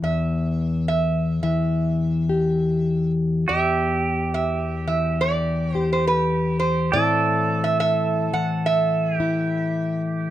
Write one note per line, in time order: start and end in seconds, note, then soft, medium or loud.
0.00 3.48 E2 medium
0.00 1.43 E3 soft
0.00 2.29 E4 soft
0.00 0.87 E5 medium
0.88 1.42 E5 medium
1.43 3.44 E3 soft
1.43 3.11 E5 medium
2.29 3.44 G4 soft
3.48 6.93 E2 medium
3.48 7.03 G4 medium
3.48 4.33 E5 medium
4.34 4.86 E5 medium
4.88 6.94 E3 medium
4.88 5.20 E5 medium
5.21 5.75 D5 medium
5.75 6.89 G4 medium
5.75 5.92 C5 medium
5.93 6.07 C5 medium
6.07 6.59 B4 medium
6.60 6.93 C5 medium
6.92 10.30 A2 medium
6.92 8.33 E3 soft
6.92 10.30 A3 medium
6.92 10.30 C4 soft
6.92 9.20 E4 medium
6.92 9.16 A4 medium
6.92 7.63 D5 medium
7.64 7.78 E5 medium
7.80 8.33 E5 medium
8.33 10.30 E3 medium
8.33 8.66 F#5 medium
8.66 10.01 E5 medium
9.16 10.30 E4 medium
9.16 10.30 G4 medium